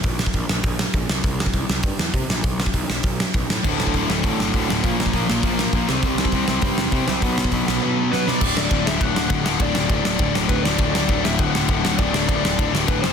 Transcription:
<<
  \new Staff \with { instrumentName = "Lead electric guitar" } { \time 4/4 \key b \phrygian \tempo 4 = 201 r1 | r1 | r1 | r1 |
r1 | r1 | r2. b'8 d''8~ | \key d \major d''8 d''4 e''8 fis''4 fis''4 |
d''4 d''4. r8 b'8 d''8~ | d''8 d''4 e''8 fis''8 fis''8 fis''4 | d''4 d''4. r8 b'8 c''8 | }
  \new Staff \with { instrumentName = "Distorted electric guitar" } { \clef bass \time 4/4 \key b \phrygian r1 | r1 | r1 | <d, a, d>4 <d, a, d>8 <d, a, d>8 <d, a, d>4 <d, a, d>8 <d, a, d>8 |
<bes, f bes>4 <bes, f bes>8 <bes, f bes>8 <bes, f bes>4 <bes, f bes>8 <c g c'>8 | <c g c'>4 <c g c'>8 <c g c'>8 <c g c'>4 <c g c'>8 <c g c'>8 | <b, fis b>4 <b, fis b>8 <b, fis b>8 <b, fis b>4 <b, fis b>8 <b, fis b>8 | \key d \major r1 |
r1 | r1 | r1 | }
  \new Staff \with { instrumentName = "Distorted electric guitar" } { \clef bass \time 4/4 \key b \phrygian r1 | r1 | r1 | <d, a, d>2 <d, a, d>2 |
<bes, f bes>2 <bes, f bes>4. <c g c'>8~ | <c g c'>4. <c g c'>2 r8 | <b, fis b>2 <b, fis b>2 | \key d \major <d, a, d>2.~ <d, a, d>8 <d, a, d>8 |
<d, a, d>2.~ <d, a, d>8 <d, a, d>8 | <d, a, d>2.~ <d, a, d>8 <d, a, d>8 | <d, a, d>2.~ <d, a, d>8 <f, c f>8 | }
  \new Staff \with { instrumentName = "Overdriven electric guitar" } { \clef bass \time 4/4 \key b \phrygian r1 | r1 | r1 | <d, a, d>4 <d, a, d>8 <d, a, d>8 <d, a, d>4 <d, a, d>8 <d, a, d>8 |
<bes, f bes>4 <bes, f bes>8 <bes, f bes>8 <bes, f bes>4 <bes, f bes>8 <c g c'>8 | <c g c'>4 <c g c'>8 <c g c'>8 <c g c'>4 <c g c'>8 <c g c'>8 | <b, fis b>4 <b, fis b>8 <b, fis b>8 <b, fis b>4 <b, fis b>8 <b, fis b>8 | \key d \major <d, a, d>8 <d, a, d>8 <d, a, d>8 <d, a, d>8 <d, a, d>8 <d, a, d>8 <d, a, d>8 <d, a, d>8 |
<d, a, d>8 <d, a, d>8 <d, a, d>8 <d, a, d>8 <d, a, d>8 <d, a, d>8 <d, a, d>8 <d, a, d>8 | <d, a, d>8 <d, a, d>8 <d, a, d>8 <d, a, d>8 <d, a, d>8 <d, a, d>8 <d, a, d>8 <d, a, d>8 | <d, a, d>8 <d, a, d>8 <d, a, d>8 <d, a, d>8 <d, a, d>8 <d, a, d>8 <d, a, d>8 <f, c f>8 | }
  \new Staff \with { instrumentName = "Picked electric bass" } { \clef bass \time 4/4 \key b \phrygian bes,,4 bes,,8 bes,,8 bes,,4 bes,,8 c,8 | c,4 c,8 c,8 g,8 e,8 c8 bes,,8 | b,,4 b,,8 b,,8 b,,4 b,,8 a,8 | d,,4 d,,8 d,,8 a,,8 g,,8 d,8 d,,8 |
bes,,4 bes,,8 bes,,8 bes,,4 bes,,8 c,8 | c,4 c,8 c,8 g,8 e,8 c8 c,8 | b,,4 b,,8 b,,8 r2 | \key d \major d,,8 d,,8 d,,8 d,,8 d,,8 d,,8 d,,8 d,,8 |
d,,8 d,,8 d,,8 d,,8 d,,8 d,,8 d,,8 d,,8 | d,,8 d,,8 d,,8 d,,8 d,,8 d,,8 d,,8 d,,8 | d,,8 d,,8 d,,8 d,,8 d,,8 d,,8 d,,8 f,,8 | }
  \new DrumStaff \with { instrumentName = "Drums" } \drummode { \time 4/4 <hho bd>8 sn16 bd16 <hho bd>8 sn8 <hho bd>8 sn8 <hho bd>8 sn8 | <hho bd>8 sn16 bd16 <hho bd>8 sn8 <hho bd>8 sn8 <hho bd>8 sn8 | <hho bd>8 sn16 bd16 <hho bd>8 sn8 <hho bd>8 sn8 <hho bd>8 sn8 | <cymc bd>8 sn16 bd16 <hho bd>8 sn8 <hho bd>8 sn8 <hho bd>8 sn8 |
<hho bd>8 sn16 bd16 <hho bd>8 sn8 <hho bd>8 sn8 <hho bd>8 sn8 | <hho bd>8 sn16 bd16 <hho bd>8 sn8 <hho bd>8 sn8 <hho bd>8 sn8 | <hho bd>8 sn16 bd16 <hho bd>8 sn8 r4 sn8 sn8 | <cymc bd>8 sn8 <bd cymr>8 sn8 <bd cymr>8 sn8 <bd cymr>8 sn8 |
<bd cymr>8 sn8 <bd cymr>8 sn8 <bd cymr>8 sn8 <bd cymr>8 sn8 | <bd cymr>8 sn8 <bd cymr>8 sn8 <bd cymr>8 sn8 <bd cymr>8 sn8 | <bd cymr>8 sn8 <bd cymr>8 sn8 <bd cymr>8 sn8 <bd cymr>8 sn8 | }
>>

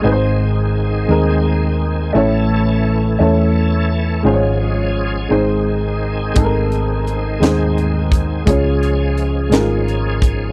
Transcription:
<<
  \new Staff \with { instrumentName = "Upright piano" } { \time 6/8 \key aes \mixolydian \tempo 4. = 57 <aes, aes c' ees' aes' ces'' c''>4. <aes c' ees' aes' bes'>4. | <a, a cis' e' a' cis''>4. <a cis' e' a' cis''>4. | <aes, aes des' f' aes' c'' des''>4. <aes, aes c' ees' aes' c''>4. | <aes c' ees' aes' a' bes'>4. <aes, aes c' ees' aes' c''>4. |
<des aes des' f' aes' des''>4. <aes des' ees' f' aes' bes'>4. | }
  \new Staff \with { instrumentName = "Tonewheel organ" } { \time 6/8 \key aes \mixolydian aes'2. | a'2. | aes'2.~ | aes'2.~ |
aes'2. | }
  \new Staff \with { instrumentName = "Tonewheel organ" } { \clef bass \time 6/8 \key aes \mixolydian << { <ees c'>2. | <e cis'>2. | <f des'>4. <ees c'>4.~ | <ees c'>2. |
<f des'>2. | } \\ { aes2. | a2. | aes2.~ | aes2. |
aes2. | } >> }
  \new Staff \with { instrumentName = "Fingered electric bass" } { \clef bass \time 6/8 \key aes \mixolydian aes,,4. ees,4. | a,,4. e,4. | aes,,4. aes,,4. | aes,,4. ees,4. |
des,4. aes,,4. | }
  \new DrumStaff \with { instrumentName = "Drums" } \drummode { \time 6/8 r4. r4. | r4. r4. | r4. r4. | <hh bd>8 hh8 hh8 <hh sn>8 hh8 <hh bd>8 |
<hh bd>8 hh8 hh8 <hh sn>8 hh8 <hh bd>8 | }
>>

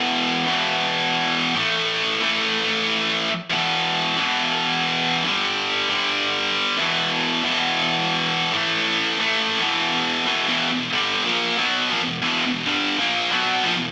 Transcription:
\new Staff \with { instrumentName = "Distorted electric guitar" } { \clef bass \time 4/4 \key a \major \tempo 4 = 138 <e, b, e>4 <e, b, e>2~ <e, b, e>8 <a, e a>8~ | <a, e a>4 <a, e a>2~ <a, e a>8 r8 | <e, b, e>4. <e, b, e>2~ <e, b, e>8 | <g, d g>4. <g, d g>2 <e, b, e>8~ |
<e, b, e>4 <e, b, e>2~ <e, b, e>8 <a, e a>8~ | <a, e a>4 <a, e a>4 <e, b, e>4. <e, b, e>8 | <e, b, e>8 <e, b,>8 <g, d g>8. <ais, f ais>8. <b, fis b>8. <ais, f>16 <e, b,>8 | <e, b, e>8 <e, b,>8 <g, d g>8. <ais, f ais>8. <b, fis b>8. <ais, f>16 <e, b,>8 | }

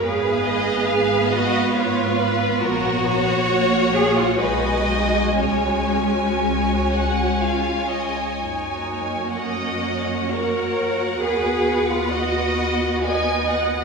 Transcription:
<<
  \new Staff \with { instrumentName = "Violin section" } { \time 3/4 \key fis \major \tempo 4 = 66 ces''8 dis''8 f''8 dis''8 cis''8 ces''8 | ais'8 cis''4. b'8 dis''8 | cis''4 cis''8 fis''8 eis''8 dis''8 | r4 dis''4 cis''4 |
b'4 dis''4 gis''8 fis''8 | }
  \new Staff \with { instrumentName = "Violin section" } { \time 3/4 \key fis \major << { f''2. | fis''2 gis''4~ | gis''2.~ | gis''4 fis''2~ |
fis''2. | } \\ { ces''2. | cis''2 dis''4 | cis''2.~ | cis''2. |
b'2. | } >> }
  \new Staff \with { instrumentName = "Cello section" } { \time 3/4 \key fis \major aes'4. fis'8 f'4 | fis'4. gis'16 eis'16 fis'4 | cis'2~ cis'8 r8 | dis'4 cis'4 ais'4 |
gis'8. eis'16 fis'4 dis''4 | }
  \new Staff \with { instrumentName = "Viola section" } { \time 3/4 \key fis \major << { ces''2. | fis'2 dis'4 | fis'2 eis'4 | fis'2.~ |
fis'2. | } \\ { ces'2.~ | ces'4 ais4 gis4~ | gis2. | ais2. |
b2. | } >> }
  \new Staff \with { instrumentName = "Double bass section" } { \clef bass \time 3/4 \key fis \major aes,,2. | ais,,2 b,,4 | cis,2. | fis,2. |
dis,2. | }
>>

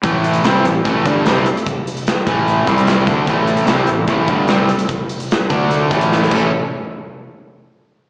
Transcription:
<<
  \new Staff \with { instrumentName = "Overdriven electric guitar" } { \clef bass \time 4/4 \key d \major \tempo 4 = 148 <a, e a>4 <c g c'>8 <a, e>8 <a, e a>8 <g, d g>8 <c g c'>8 r8 | r4. <a, e a>4 <c g c'>4 <d a d'>8 | <a, e a>4 <c g c'>8 <a, e>8 <a, e a>8 <g, d g>8 <c g c'>8 r8 | r4. <d a d'>4 <a, e a>4 <a, e a cis' a'>8 |
r1 | }
  \new Staff \with { instrumentName = "Fingered electric bass" } { \clef bass \time 4/4 \key d \major a,,4 c,8 a,,8 a,,8 g,,8 c,8 r8 | r4. a,,4 c,4 d,8 | a,,4 c,8 a,,8 a,,8 g,,8 c,8 r8 | r4. d,4 a,,4 a,,8 |
r1 | }
  \new DrumStaff \with { instrumentName = "Drums" } \drummode { \time 4/4 <hh bd>8 hh16 hh16 <hh sn>8 hh8 <hh bd>8 <hh bd>8 <hh sn>8 hh16 hh16 | <hh bd>8 hh16 hh16 <hh sn>8 <hh bd>8 hh8 <hh bd>16 hh16 <hh sn>8 <hh bd>8 | <hh bd>8 hh16 hh16 <hh sn>8 hh8 <hh bd>8 <hh bd>8 <hh sn>8 <hh sn>16 hh16 | <hh bd>8 hh16 hh16 <hh sn>8 <hh bd>8 hh8 <hh bd>16 hh16 sn16 sn16 <cymc bd>8 |
r4 r4 r4 r4 | }
>>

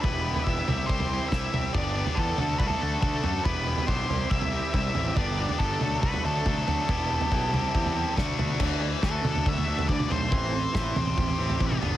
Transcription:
<<
  \new Staff \with { instrumentName = "Lead electric guitar" } { \time 4/4 \key d \mixolydian \tempo 4 = 140 b'4 e''4 c''4 e''4 | d''4 a'4 b'16 a'8. a'4 | b'4 c''4 e''4 e''4 | d''4 a'4 b'8 a'4.~ |
a'2. r4 | r4 a'4 e''4 d''8 c''8~ | c''2.~ c''8 r8 | }
  \new Staff \with { instrumentName = "Distorted electric guitar" } { \time 4/4 \key d \mixolydian <g b e' g'>8 <g b e' g'>8 <g b e' g'>8 <g c' e' g'>8 <g c' e' g'>8 <g c' e' g'>8 <g c' e' g'>8 <g c' e' g'>8 | <b d' g'>8 <b d' g'>8 <b d' g'>8 <a d' fis'>8 <a d' fis'>8 <a d' fis'>8 <a d' fis'>8 <a d' fis'>8 | <b e' g'>8 <b e' g'>8 <b e' g'>8 <e c' e' g'>8 <e c' e' g'>8 <e c' e' g'>8 <e c' e' g'>8 <e c' e' g'>8 | <b d' g'>8 <b d' g'>8 <b d' g'>8 <a d' fis'>8 <a d' fis'>8 <a d' fis'>8 <a d' fis'>8 <a d' fis'>8 |
<b e' g'>8 <b e' g'>8 <b e' g'>8 <e c' e' g'>8 <e c' e' g'>8 <e c' e' g'>8 <a d' fis'>8 <a d' fis'>8 | e4 e8 d'8 fis'8 d'8 e8 a8 | e4 e8 c'8 g'8 c'8 e8 b8 | }
  \new Staff \with { instrumentName = "Overdriven electric guitar" } { \time 4/4 \key d \mixolydian <g b e' g'>8 <g b e' g'>8 <g b e' g'>8 <c' e' g'>8 <c' e' g'>8 <c' e' g'>8 <c' e' g'>8 <c' e' g'>8 | <b d' g'>8 <b d' g'>8 <b d' g'>8 <a d' fis'>8 <a d' fis'>8 <a d' fis'>8 <a d' fis'>8 <a d' fis'>8 | <g b e' g'>8 <g b e' g'>8 <g b e' g'>8 <g c' e' g'>8 <g c' e' g'>8 <g c' e' g'>8 <g c' e' g'>8 <g c' e' g'>8 | <b d' g'>8 <b d' g'>8 <b d' g'>8 <fis a d' a'>8 <fis a d' a'>8 <fis a d' a'>8 <fis a d' a'>8 <fis a d' a'>8 |
<g b e' g'>8 <g b e' g'>8 <g b e' g'>8 <g c' e' g'>8 <g c' e' g'>8 <g c' e' g'>8 <a d' fis'>8 <a d' fis'>8 | <a d' fis'>8 <a d'>8 <a d' fis'>8 <a d'>8 <a d'>8 <a d' fis'>8 <a d'>8 <a d'>8 | <e c' e'>8 <e c'>8 <e c' e'>8 <e c'>8 <e c'>8 <e c' e'>8 <e c'>8 <g b d'>8 | }
  \new Staff \with { instrumentName = "Picked electric bass" } { \clef bass \time 4/4 \key d \mixolydian e,,4 e,,8 c,8 c,4 c,8 c,8 | g,,4 e,8 d,8 c,8 d,8 d,8 fis,8 | e,,4 b,,8 c,8 c,4 c,8 a,,8 | g,,4 g,,8 d,8 c,8 d,8 d,8 d,8 |
e,,4 b,,8 c,8 e,4 d,8 d,8 | d,4 d,8 d,8 d,8 d,8 d,8 b,,8 | a,,4 a,,8 a,,8 a,,8 a,,8 a,,8 g,,8 | }
  \new DrumStaff \with { instrumentName = "Drums" } \drummode { \time 4/4 <bd tomfh>8. tomfh16 bd8 <tomfh toml>8 bd16 tomfh8. <bd sn toml>8 <tomfh toml>8 | <bd tomfh>8. tomfh16 bd8 <tomfh toml>8 bd16 tomfh8. <bd toml>8 tomfh8 | <bd tomfh>8. tomfh16 bd8 tomfh8 bd16 tomfh8. <bd toml>8 tomfh8 | <bd tomfh>8. tomfh16 bd8 <tomfh toml>8 bd16 tomfh8. <bd toml>8 tomfh8 |
<bd tomfh>8. tomfh16 bd8 <tomfh toml>8 bd16 tomfh8. <bd sn toml>8 <tomfh toml>8 | <cymc bd tomfh>4 <bd sn>8 <tomfh toml>16 tomfh16 <bd tomfh>16 tomfh8 tomfh16 bd16 toml16 tomfh8 | <bd tomfh>4 <bd sn>8 <tomfh toml>16 tomfh16 <bd tomfh>16 tomfh8 tomfh16 bd16 toml16 tomfh8 | }
>>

